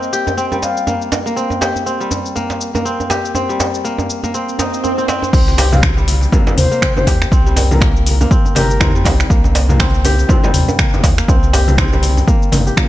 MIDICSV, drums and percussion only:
0, 0, Header, 1, 3, 480
1, 0, Start_track
1, 0, Key_signature, -3, "minor"
1, 0, Tempo, 495868
1, 1323, Time_signature, 4, 2, 24, 8
1, 12472, End_track
2, 0, Start_track
2, 0, Title_t, "Djembe"
2, 262, Note_on_c, 9, 63, 87
2, 359, Note_off_c, 9, 63, 0
2, 501, Note_on_c, 9, 63, 64
2, 598, Note_off_c, 9, 63, 0
2, 604, Note_on_c, 9, 62, 70
2, 701, Note_off_c, 9, 62, 0
2, 842, Note_on_c, 9, 63, 87
2, 939, Note_off_c, 9, 63, 0
2, 1083, Note_on_c, 9, 62, 106
2, 1086, Note_on_c, 9, 63, 64
2, 1180, Note_off_c, 9, 62, 0
2, 1183, Note_off_c, 9, 63, 0
2, 1455, Note_on_c, 9, 63, 83
2, 1551, Note_off_c, 9, 63, 0
2, 1564, Note_on_c, 9, 62, 94
2, 1661, Note_off_c, 9, 62, 0
2, 1700, Note_on_c, 9, 63, 56
2, 1797, Note_off_c, 9, 63, 0
2, 2043, Note_on_c, 9, 63, 88
2, 2139, Note_off_c, 9, 63, 0
2, 2289, Note_on_c, 9, 63, 56
2, 2386, Note_off_c, 9, 63, 0
2, 2419, Note_on_c, 9, 62, 73
2, 2516, Note_off_c, 9, 62, 0
2, 2660, Note_on_c, 9, 63, 92
2, 2757, Note_off_c, 9, 63, 0
2, 2904, Note_on_c, 9, 63, 65
2, 3000, Note_on_c, 9, 62, 96
2, 3001, Note_off_c, 9, 63, 0
2, 3097, Note_off_c, 9, 62, 0
2, 3239, Note_on_c, 9, 63, 84
2, 3336, Note_off_c, 9, 63, 0
2, 3483, Note_on_c, 9, 63, 64
2, 3485, Note_on_c, 9, 62, 95
2, 3579, Note_off_c, 9, 63, 0
2, 3582, Note_off_c, 9, 62, 0
2, 3857, Note_on_c, 9, 63, 91
2, 3954, Note_off_c, 9, 63, 0
2, 4099, Note_on_c, 9, 63, 67
2, 4196, Note_off_c, 9, 63, 0
2, 4442, Note_on_c, 9, 63, 79
2, 4445, Note_on_c, 9, 62, 75
2, 4539, Note_off_c, 9, 63, 0
2, 4542, Note_off_c, 9, 62, 0
2, 4689, Note_on_c, 9, 63, 56
2, 4786, Note_off_c, 9, 63, 0
2, 4920, Note_on_c, 9, 62, 113
2, 5017, Note_off_c, 9, 62, 0
2, 5057, Note_on_c, 9, 63, 89
2, 5153, Note_off_c, 9, 63, 0
2, 5165, Note_on_c, 9, 63, 70
2, 5262, Note_off_c, 9, 63, 0
2, 5402, Note_on_c, 9, 62, 103
2, 5499, Note_off_c, 9, 62, 0
2, 5542, Note_on_c, 9, 63, 89
2, 5639, Note_off_c, 9, 63, 0
2, 5781, Note_on_c, 9, 63, 63
2, 5877, Note_off_c, 9, 63, 0
2, 6123, Note_on_c, 9, 63, 87
2, 6220, Note_off_c, 9, 63, 0
2, 6263, Note_on_c, 9, 62, 86
2, 6359, Note_off_c, 9, 62, 0
2, 6364, Note_on_c, 9, 63, 65
2, 6461, Note_off_c, 9, 63, 0
2, 6746, Note_on_c, 9, 63, 99
2, 6842, Note_off_c, 9, 63, 0
2, 6847, Note_on_c, 9, 62, 100
2, 6943, Note_off_c, 9, 62, 0
2, 6983, Note_on_c, 9, 63, 68
2, 7080, Note_off_c, 9, 63, 0
2, 7322, Note_on_c, 9, 62, 102
2, 7333, Note_on_c, 9, 63, 88
2, 7419, Note_off_c, 9, 62, 0
2, 7430, Note_off_c, 9, 63, 0
2, 7571, Note_on_c, 9, 63, 75
2, 7668, Note_off_c, 9, 63, 0
2, 7947, Note_on_c, 9, 63, 102
2, 8043, Note_off_c, 9, 63, 0
2, 8181, Note_on_c, 9, 63, 69
2, 8278, Note_off_c, 9, 63, 0
2, 8285, Note_on_c, 9, 62, 90
2, 8382, Note_off_c, 9, 62, 0
2, 8529, Note_on_c, 9, 63, 91
2, 8626, Note_off_c, 9, 63, 0
2, 8763, Note_on_c, 9, 63, 69
2, 8772, Note_on_c, 9, 62, 125
2, 8860, Note_off_c, 9, 63, 0
2, 8869, Note_off_c, 9, 62, 0
2, 9139, Note_on_c, 9, 63, 93
2, 9236, Note_off_c, 9, 63, 0
2, 9245, Note_on_c, 9, 62, 96
2, 9342, Note_off_c, 9, 62, 0
2, 9377, Note_on_c, 9, 63, 76
2, 9474, Note_off_c, 9, 63, 0
2, 9729, Note_on_c, 9, 63, 100
2, 9826, Note_off_c, 9, 63, 0
2, 9966, Note_on_c, 9, 63, 73
2, 10063, Note_off_c, 9, 63, 0
2, 10108, Note_on_c, 9, 62, 83
2, 10205, Note_off_c, 9, 62, 0
2, 10343, Note_on_c, 9, 63, 101
2, 10439, Note_off_c, 9, 63, 0
2, 10589, Note_on_c, 9, 63, 71
2, 10682, Note_on_c, 9, 62, 114
2, 10686, Note_off_c, 9, 63, 0
2, 10779, Note_off_c, 9, 62, 0
2, 10931, Note_on_c, 9, 63, 102
2, 11028, Note_off_c, 9, 63, 0
2, 11164, Note_on_c, 9, 62, 109
2, 11165, Note_on_c, 9, 63, 71
2, 11261, Note_off_c, 9, 62, 0
2, 11262, Note_off_c, 9, 63, 0
2, 11551, Note_on_c, 9, 63, 100
2, 11648, Note_off_c, 9, 63, 0
2, 11786, Note_on_c, 9, 63, 73
2, 11883, Note_off_c, 9, 63, 0
2, 12121, Note_on_c, 9, 62, 72
2, 12131, Note_on_c, 9, 63, 103
2, 12218, Note_off_c, 9, 62, 0
2, 12227, Note_off_c, 9, 63, 0
2, 12361, Note_on_c, 9, 63, 69
2, 12458, Note_off_c, 9, 63, 0
2, 12472, End_track
3, 0, Start_track
3, 0, Title_t, "Drums"
3, 27, Note_on_c, 9, 82, 24
3, 124, Note_off_c, 9, 82, 0
3, 128, Note_on_c, 9, 82, 91
3, 224, Note_off_c, 9, 82, 0
3, 266, Note_on_c, 9, 82, 34
3, 362, Note_off_c, 9, 82, 0
3, 366, Note_on_c, 9, 82, 49
3, 463, Note_off_c, 9, 82, 0
3, 506, Note_on_c, 9, 82, 25
3, 603, Note_off_c, 9, 82, 0
3, 607, Note_on_c, 9, 82, 89
3, 703, Note_off_c, 9, 82, 0
3, 746, Note_on_c, 9, 82, 38
3, 843, Note_off_c, 9, 82, 0
3, 846, Note_on_c, 9, 82, 45
3, 943, Note_off_c, 9, 82, 0
3, 984, Note_on_c, 9, 82, 25
3, 1081, Note_off_c, 9, 82, 0
3, 1087, Note_on_c, 9, 82, 89
3, 1184, Note_off_c, 9, 82, 0
3, 1228, Note_on_c, 9, 82, 37
3, 1324, Note_off_c, 9, 82, 0
3, 1327, Note_on_c, 9, 82, 48
3, 1424, Note_off_c, 9, 82, 0
3, 1466, Note_on_c, 9, 82, 26
3, 1563, Note_off_c, 9, 82, 0
3, 1565, Note_on_c, 9, 82, 88
3, 1662, Note_off_c, 9, 82, 0
3, 1706, Note_on_c, 9, 82, 34
3, 1803, Note_off_c, 9, 82, 0
3, 1807, Note_on_c, 9, 82, 49
3, 1904, Note_off_c, 9, 82, 0
3, 1944, Note_on_c, 9, 82, 24
3, 2041, Note_off_c, 9, 82, 0
3, 2045, Note_on_c, 9, 82, 86
3, 2142, Note_off_c, 9, 82, 0
3, 2184, Note_on_c, 9, 82, 35
3, 2281, Note_off_c, 9, 82, 0
3, 2285, Note_on_c, 9, 82, 49
3, 2382, Note_off_c, 9, 82, 0
3, 2425, Note_on_c, 9, 82, 24
3, 2522, Note_off_c, 9, 82, 0
3, 2526, Note_on_c, 9, 82, 85
3, 2623, Note_off_c, 9, 82, 0
3, 2665, Note_on_c, 9, 82, 36
3, 2762, Note_off_c, 9, 82, 0
3, 2767, Note_on_c, 9, 82, 46
3, 2864, Note_off_c, 9, 82, 0
3, 2908, Note_on_c, 9, 82, 25
3, 3005, Note_off_c, 9, 82, 0
3, 3008, Note_on_c, 9, 82, 82
3, 3105, Note_off_c, 9, 82, 0
3, 3147, Note_on_c, 9, 82, 37
3, 3243, Note_off_c, 9, 82, 0
3, 3246, Note_on_c, 9, 82, 53
3, 3343, Note_off_c, 9, 82, 0
3, 3385, Note_on_c, 9, 82, 25
3, 3482, Note_off_c, 9, 82, 0
3, 3485, Note_on_c, 9, 82, 92
3, 3582, Note_off_c, 9, 82, 0
3, 3624, Note_on_c, 9, 82, 36
3, 3721, Note_off_c, 9, 82, 0
3, 3727, Note_on_c, 9, 82, 49
3, 3824, Note_off_c, 9, 82, 0
3, 3866, Note_on_c, 9, 82, 26
3, 3963, Note_off_c, 9, 82, 0
3, 3967, Note_on_c, 9, 82, 90
3, 4064, Note_off_c, 9, 82, 0
3, 4104, Note_on_c, 9, 82, 35
3, 4201, Note_off_c, 9, 82, 0
3, 4205, Note_on_c, 9, 82, 50
3, 4301, Note_off_c, 9, 82, 0
3, 4343, Note_on_c, 9, 82, 25
3, 4440, Note_off_c, 9, 82, 0
3, 4446, Note_on_c, 9, 82, 89
3, 4543, Note_off_c, 9, 82, 0
3, 4586, Note_on_c, 9, 82, 38
3, 4682, Note_off_c, 9, 82, 0
3, 4687, Note_on_c, 9, 82, 47
3, 4783, Note_off_c, 9, 82, 0
3, 4825, Note_on_c, 9, 82, 24
3, 4922, Note_off_c, 9, 82, 0
3, 4926, Note_on_c, 9, 82, 81
3, 5023, Note_off_c, 9, 82, 0
3, 5067, Note_on_c, 9, 82, 38
3, 5162, Note_on_c, 9, 36, 121
3, 5164, Note_off_c, 9, 82, 0
3, 5164, Note_on_c, 9, 49, 112
3, 5167, Note_on_c, 9, 82, 55
3, 5258, Note_off_c, 9, 36, 0
3, 5260, Note_off_c, 9, 49, 0
3, 5264, Note_off_c, 9, 82, 0
3, 5305, Note_on_c, 9, 62, 59
3, 5307, Note_on_c, 9, 82, 27
3, 5402, Note_off_c, 9, 62, 0
3, 5404, Note_off_c, 9, 82, 0
3, 5404, Note_on_c, 9, 46, 101
3, 5407, Note_on_c, 9, 82, 97
3, 5501, Note_off_c, 9, 46, 0
3, 5504, Note_off_c, 9, 82, 0
3, 5541, Note_on_c, 9, 64, 98
3, 5542, Note_on_c, 9, 47, 77
3, 5546, Note_on_c, 9, 82, 41
3, 5636, Note_on_c, 9, 62, 42
3, 5637, Note_on_c, 9, 63, 92
3, 5638, Note_off_c, 9, 64, 0
3, 5639, Note_off_c, 9, 47, 0
3, 5642, Note_on_c, 9, 36, 125
3, 5643, Note_off_c, 9, 82, 0
3, 5643, Note_on_c, 9, 26, 114
3, 5647, Note_on_c, 9, 82, 57
3, 5733, Note_off_c, 9, 62, 0
3, 5734, Note_off_c, 9, 63, 0
3, 5739, Note_off_c, 9, 36, 0
3, 5740, Note_off_c, 9, 26, 0
3, 5743, Note_off_c, 9, 82, 0
3, 5786, Note_on_c, 9, 82, 27
3, 5882, Note_on_c, 9, 63, 66
3, 5883, Note_off_c, 9, 82, 0
3, 5883, Note_on_c, 9, 46, 98
3, 5887, Note_on_c, 9, 82, 96
3, 5979, Note_off_c, 9, 63, 0
3, 5980, Note_off_c, 9, 46, 0
3, 5983, Note_off_c, 9, 82, 0
3, 6015, Note_on_c, 9, 62, 53
3, 6027, Note_on_c, 9, 82, 40
3, 6111, Note_off_c, 9, 62, 0
3, 6122, Note_on_c, 9, 36, 119
3, 6124, Note_off_c, 9, 82, 0
3, 6127, Note_on_c, 9, 64, 114
3, 6128, Note_on_c, 9, 63, 56
3, 6128, Note_on_c, 9, 82, 53
3, 6219, Note_off_c, 9, 36, 0
3, 6224, Note_off_c, 9, 64, 0
3, 6225, Note_off_c, 9, 63, 0
3, 6225, Note_off_c, 9, 82, 0
3, 6261, Note_on_c, 9, 64, 98
3, 6268, Note_on_c, 9, 82, 27
3, 6358, Note_off_c, 9, 64, 0
3, 6364, Note_off_c, 9, 82, 0
3, 6366, Note_on_c, 9, 46, 98
3, 6366, Note_on_c, 9, 47, 83
3, 6366, Note_on_c, 9, 62, 42
3, 6370, Note_on_c, 9, 82, 100
3, 6462, Note_off_c, 9, 62, 0
3, 6463, Note_off_c, 9, 46, 0
3, 6463, Note_off_c, 9, 47, 0
3, 6466, Note_off_c, 9, 82, 0
3, 6507, Note_on_c, 9, 82, 41
3, 6603, Note_on_c, 9, 36, 115
3, 6604, Note_off_c, 9, 82, 0
3, 6605, Note_on_c, 9, 26, 114
3, 6605, Note_on_c, 9, 47, 87
3, 6608, Note_on_c, 9, 82, 53
3, 6700, Note_off_c, 9, 36, 0
3, 6701, Note_off_c, 9, 26, 0
3, 6701, Note_off_c, 9, 47, 0
3, 6705, Note_off_c, 9, 82, 0
3, 6742, Note_on_c, 9, 63, 96
3, 6749, Note_on_c, 9, 82, 28
3, 6839, Note_off_c, 9, 63, 0
3, 6843, Note_on_c, 9, 36, 78
3, 6845, Note_off_c, 9, 82, 0
3, 6846, Note_on_c, 9, 46, 91
3, 6849, Note_on_c, 9, 62, 56
3, 6849, Note_on_c, 9, 82, 91
3, 6940, Note_off_c, 9, 36, 0
3, 6942, Note_off_c, 9, 46, 0
3, 6945, Note_off_c, 9, 62, 0
3, 6946, Note_off_c, 9, 82, 0
3, 6986, Note_on_c, 9, 26, 66
3, 6989, Note_on_c, 9, 82, 41
3, 7083, Note_off_c, 9, 26, 0
3, 7083, Note_on_c, 9, 36, 127
3, 7086, Note_off_c, 9, 82, 0
3, 7089, Note_on_c, 9, 82, 59
3, 7180, Note_off_c, 9, 36, 0
3, 7186, Note_off_c, 9, 82, 0
3, 7228, Note_on_c, 9, 82, 29
3, 7230, Note_on_c, 9, 62, 55
3, 7325, Note_off_c, 9, 82, 0
3, 7325, Note_on_c, 9, 46, 97
3, 7327, Note_off_c, 9, 62, 0
3, 7328, Note_on_c, 9, 82, 100
3, 7422, Note_off_c, 9, 46, 0
3, 7425, Note_off_c, 9, 82, 0
3, 7466, Note_on_c, 9, 47, 76
3, 7466, Note_on_c, 9, 64, 102
3, 7469, Note_on_c, 9, 82, 38
3, 7556, Note_on_c, 9, 63, 101
3, 7563, Note_off_c, 9, 47, 0
3, 7563, Note_off_c, 9, 64, 0
3, 7563, Note_on_c, 9, 36, 127
3, 7566, Note_off_c, 9, 82, 0
3, 7566, Note_on_c, 9, 26, 109
3, 7569, Note_on_c, 9, 62, 36
3, 7570, Note_on_c, 9, 82, 55
3, 7653, Note_off_c, 9, 63, 0
3, 7660, Note_off_c, 9, 36, 0
3, 7663, Note_off_c, 9, 26, 0
3, 7666, Note_off_c, 9, 62, 0
3, 7667, Note_off_c, 9, 82, 0
3, 7710, Note_on_c, 9, 82, 28
3, 7804, Note_on_c, 9, 63, 76
3, 7806, Note_off_c, 9, 82, 0
3, 7807, Note_on_c, 9, 46, 94
3, 7810, Note_on_c, 9, 82, 101
3, 7901, Note_off_c, 9, 63, 0
3, 7903, Note_off_c, 9, 46, 0
3, 7907, Note_off_c, 9, 82, 0
3, 7943, Note_on_c, 9, 62, 55
3, 7948, Note_on_c, 9, 82, 42
3, 8040, Note_off_c, 9, 62, 0
3, 8043, Note_on_c, 9, 36, 127
3, 8045, Note_off_c, 9, 82, 0
3, 8048, Note_on_c, 9, 82, 55
3, 8140, Note_off_c, 9, 36, 0
3, 8145, Note_off_c, 9, 82, 0
3, 8187, Note_on_c, 9, 82, 27
3, 8276, Note_on_c, 9, 64, 85
3, 8284, Note_off_c, 9, 82, 0
3, 8284, Note_on_c, 9, 63, 66
3, 8286, Note_on_c, 9, 46, 95
3, 8286, Note_on_c, 9, 47, 81
3, 8286, Note_on_c, 9, 62, 45
3, 8289, Note_on_c, 9, 82, 100
3, 8373, Note_off_c, 9, 64, 0
3, 8381, Note_off_c, 9, 63, 0
3, 8382, Note_off_c, 9, 46, 0
3, 8382, Note_off_c, 9, 47, 0
3, 8383, Note_off_c, 9, 62, 0
3, 8386, Note_off_c, 9, 82, 0
3, 8428, Note_on_c, 9, 82, 42
3, 8517, Note_on_c, 9, 64, 84
3, 8523, Note_on_c, 9, 36, 122
3, 8523, Note_on_c, 9, 63, 124
3, 8525, Note_off_c, 9, 82, 0
3, 8525, Note_on_c, 9, 26, 104
3, 8529, Note_on_c, 9, 82, 54
3, 8614, Note_off_c, 9, 64, 0
3, 8620, Note_off_c, 9, 36, 0
3, 8620, Note_off_c, 9, 63, 0
3, 8622, Note_off_c, 9, 26, 0
3, 8625, Note_off_c, 9, 82, 0
3, 8669, Note_on_c, 9, 82, 29
3, 8757, Note_on_c, 9, 63, 101
3, 8764, Note_on_c, 9, 36, 86
3, 8764, Note_on_c, 9, 62, 50
3, 8765, Note_on_c, 9, 46, 88
3, 8766, Note_off_c, 9, 82, 0
3, 8769, Note_on_c, 9, 82, 98
3, 8854, Note_off_c, 9, 63, 0
3, 8860, Note_off_c, 9, 36, 0
3, 8860, Note_off_c, 9, 62, 0
3, 8862, Note_off_c, 9, 46, 0
3, 8866, Note_off_c, 9, 82, 0
3, 8906, Note_on_c, 9, 26, 68
3, 8909, Note_on_c, 9, 82, 42
3, 9003, Note_off_c, 9, 26, 0
3, 9003, Note_on_c, 9, 36, 127
3, 9006, Note_off_c, 9, 82, 0
3, 9009, Note_on_c, 9, 82, 57
3, 9100, Note_off_c, 9, 36, 0
3, 9106, Note_off_c, 9, 82, 0
3, 9140, Note_on_c, 9, 62, 51
3, 9149, Note_on_c, 9, 82, 28
3, 9237, Note_off_c, 9, 62, 0
3, 9245, Note_off_c, 9, 82, 0
3, 9245, Note_on_c, 9, 46, 92
3, 9248, Note_on_c, 9, 82, 103
3, 9342, Note_off_c, 9, 46, 0
3, 9345, Note_off_c, 9, 82, 0
3, 9384, Note_on_c, 9, 47, 76
3, 9387, Note_on_c, 9, 64, 88
3, 9387, Note_on_c, 9, 82, 41
3, 9481, Note_off_c, 9, 47, 0
3, 9482, Note_on_c, 9, 62, 37
3, 9483, Note_on_c, 9, 36, 125
3, 9483, Note_on_c, 9, 63, 101
3, 9484, Note_off_c, 9, 64, 0
3, 9484, Note_off_c, 9, 82, 0
3, 9485, Note_on_c, 9, 26, 113
3, 9489, Note_on_c, 9, 82, 55
3, 9579, Note_off_c, 9, 62, 0
3, 9580, Note_off_c, 9, 36, 0
3, 9580, Note_off_c, 9, 63, 0
3, 9582, Note_off_c, 9, 26, 0
3, 9585, Note_off_c, 9, 82, 0
3, 9627, Note_on_c, 9, 82, 28
3, 9721, Note_on_c, 9, 63, 66
3, 9723, Note_off_c, 9, 82, 0
3, 9725, Note_on_c, 9, 46, 94
3, 9728, Note_on_c, 9, 82, 105
3, 9818, Note_off_c, 9, 63, 0
3, 9821, Note_off_c, 9, 46, 0
3, 9825, Note_off_c, 9, 82, 0
3, 9864, Note_on_c, 9, 62, 49
3, 9866, Note_on_c, 9, 82, 41
3, 9955, Note_on_c, 9, 63, 62
3, 9959, Note_on_c, 9, 64, 115
3, 9961, Note_off_c, 9, 62, 0
3, 9963, Note_off_c, 9, 82, 0
3, 9963, Note_on_c, 9, 36, 127
3, 9967, Note_on_c, 9, 82, 54
3, 10052, Note_off_c, 9, 63, 0
3, 10055, Note_off_c, 9, 64, 0
3, 10060, Note_off_c, 9, 36, 0
3, 10064, Note_off_c, 9, 82, 0
3, 10101, Note_on_c, 9, 64, 104
3, 10105, Note_on_c, 9, 82, 29
3, 10198, Note_off_c, 9, 64, 0
3, 10199, Note_on_c, 9, 62, 39
3, 10202, Note_off_c, 9, 82, 0
3, 10202, Note_on_c, 9, 46, 89
3, 10202, Note_on_c, 9, 47, 78
3, 10205, Note_on_c, 9, 82, 100
3, 10296, Note_off_c, 9, 62, 0
3, 10298, Note_off_c, 9, 46, 0
3, 10298, Note_off_c, 9, 47, 0
3, 10302, Note_off_c, 9, 82, 0
3, 10345, Note_on_c, 9, 82, 41
3, 10442, Note_off_c, 9, 82, 0
3, 10443, Note_on_c, 9, 36, 127
3, 10444, Note_on_c, 9, 26, 109
3, 10444, Note_on_c, 9, 47, 85
3, 10447, Note_on_c, 9, 82, 54
3, 10540, Note_off_c, 9, 36, 0
3, 10541, Note_off_c, 9, 26, 0
3, 10541, Note_off_c, 9, 47, 0
3, 10544, Note_off_c, 9, 82, 0
3, 10587, Note_on_c, 9, 82, 30
3, 10589, Note_on_c, 9, 63, 110
3, 10683, Note_on_c, 9, 36, 84
3, 10684, Note_off_c, 9, 82, 0
3, 10684, Note_on_c, 9, 46, 88
3, 10685, Note_off_c, 9, 63, 0
3, 10686, Note_on_c, 9, 62, 48
3, 10688, Note_on_c, 9, 82, 102
3, 10780, Note_off_c, 9, 36, 0
3, 10781, Note_off_c, 9, 46, 0
3, 10783, Note_off_c, 9, 62, 0
3, 10785, Note_off_c, 9, 82, 0
3, 10825, Note_on_c, 9, 26, 63
3, 10828, Note_on_c, 9, 82, 43
3, 10922, Note_off_c, 9, 26, 0
3, 10923, Note_on_c, 9, 36, 125
3, 10925, Note_off_c, 9, 82, 0
3, 10928, Note_on_c, 9, 82, 59
3, 11020, Note_off_c, 9, 36, 0
3, 11025, Note_off_c, 9, 82, 0
3, 11063, Note_on_c, 9, 62, 50
3, 11068, Note_on_c, 9, 82, 28
3, 11160, Note_off_c, 9, 62, 0
3, 11165, Note_off_c, 9, 82, 0
3, 11167, Note_on_c, 9, 46, 91
3, 11170, Note_on_c, 9, 82, 102
3, 11263, Note_off_c, 9, 46, 0
3, 11267, Note_off_c, 9, 82, 0
3, 11305, Note_on_c, 9, 47, 77
3, 11305, Note_on_c, 9, 64, 93
3, 11309, Note_on_c, 9, 82, 39
3, 11397, Note_on_c, 9, 62, 35
3, 11401, Note_on_c, 9, 63, 110
3, 11402, Note_off_c, 9, 47, 0
3, 11402, Note_off_c, 9, 64, 0
3, 11403, Note_on_c, 9, 36, 127
3, 11405, Note_on_c, 9, 26, 110
3, 11406, Note_off_c, 9, 82, 0
3, 11409, Note_on_c, 9, 82, 54
3, 11493, Note_off_c, 9, 62, 0
3, 11498, Note_off_c, 9, 63, 0
3, 11500, Note_off_c, 9, 36, 0
3, 11502, Note_off_c, 9, 26, 0
3, 11505, Note_off_c, 9, 82, 0
3, 11547, Note_on_c, 9, 82, 28
3, 11641, Note_on_c, 9, 63, 73
3, 11643, Note_on_c, 9, 46, 89
3, 11644, Note_off_c, 9, 82, 0
3, 11646, Note_on_c, 9, 82, 96
3, 11738, Note_off_c, 9, 63, 0
3, 11739, Note_off_c, 9, 46, 0
3, 11743, Note_off_c, 9, 82, 0
3, 11784, Note_on_c, 9, 62, 46
3, 11786, Note_on_c, 9, 82, 41
3, 11881, Note_off_c, 9, 62, 0
3, 11883, Note_off_c, 9, 82, 0
3, 11883, Note_on_c, 9, 36, 126
3, 11888, Note_on_c, 9, 82, 56
3, 11980, Note_off_c, 9, 36, 0
3, 11985, Note_off_c, 9, 82, 0
3, 12027, Note_on_c, 9, 82, 28
3, 12118, Note_on_c, 9, 63, 77
3, 12124, Note_off_c, 9, 82, 0
3, 12124, Note_on_c, 9, 46, 93
3, 12124, Note_on_c, 9, 47, 80
3, 12124, Note_on_c, 9, 62, 42
3, 12124, Note_on_c, 9, 64, 86
3, 12128, Note_on_c, 9, 82, 99
3, 12214, Note_off_c, 9, 63, 0
3, 12221, Note_off_c, 9, 46, 0
3, 12221, Note_off_c, 9, 47, 0
3, 12221, Note_off_c, 9, 62, 0
3, 12221, Note_off_c, 9, 64, 0
3, 12224, Note_off_c, 9, 82, 0
3, 12267, Note_on_c, 9, 82, 43
3, 12363, Note_off_c, 9, 82, 0
3, 12363, Note_on_c, 9, 36, 124
3, 12364, Note_on_c, 9, 63, 102
3, 12365, Note_on_c, 9, 26, 104
3, 12367, Note_on_c, 9, 64, 78
3, 12369, Note_on_c, 9, 82, 54
3, 12460, Note_off_c, 9, 36, 0
3, 12461, Note_off_c, 9, 63, 0
3, 12462, Note_off_c, 9, 26, 0
3, 12463, Note_off_c, 9, 64, 0
3, 12465, Note_off_c, 9, 82, 0
3, 12472, End_track
0, 0, End_of_file